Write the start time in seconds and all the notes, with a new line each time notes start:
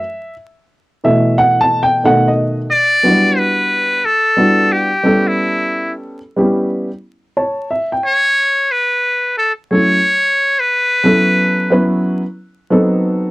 Already playing: E5
1.04 B2 E3 A3 E5
1.38 F#5
1.61 A5
1.83 G5
2.04 B2 D#3 A3 F#5
2.28 D#5
2.71 D5
3.03 F#3 B3 D4 E4 F#4
3.10 G3
3.38 B4
4.05 A4
4.37 G3 B3 D4 E4 F#4
4.72 G4
5.03 G3 B3 C#4 E4 A4
5.28 E4
6.37 G3 B3 C#4 E4 G4
7.37 C#5 A5
7.71 E5
7.92 G5
8.05 C#5
8.71 B4
9.38 A4
9.71 F#3 A3 C#4 E4 A4 C#5
10.60 B4
11.03 F#3 B3 C#4 E4 A4
11.70 F#3 B3 C#4 E4 B4
12.70 F#3 B3 C4 D#4 A4